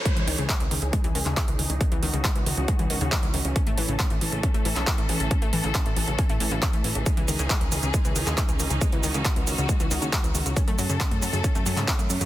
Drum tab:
HH |xxoxxxoxxxoxxxox|xxoxxxoxxxoxxxox|xxoxxxoxxxoxxxox|xxoxxxoxxxoxxxox|
SH |----------------|----------------|----------------|----------------|
CP |----x------xx---|----x-------x---|----x------xx---|----x-------x---|
BD |o---o---o---o---|o---o---o---o---|o---o---o---o---|o---o---o---o---|

HH |xxoxxxoxxxo-xxox|xxoxxxoxxxoxxxox|xxoxxxoxxxoxxxox|
SH |x-xxx-xxxxxxxxxx|x-xxx-xxxxxxxxxx|x-xxx-xxxxxxxxxx|
CP |----x------xx---|----x-------x---|----x------xx---|
BD |o---o---o---o---|o---o---o---o---|o---o---o---o---|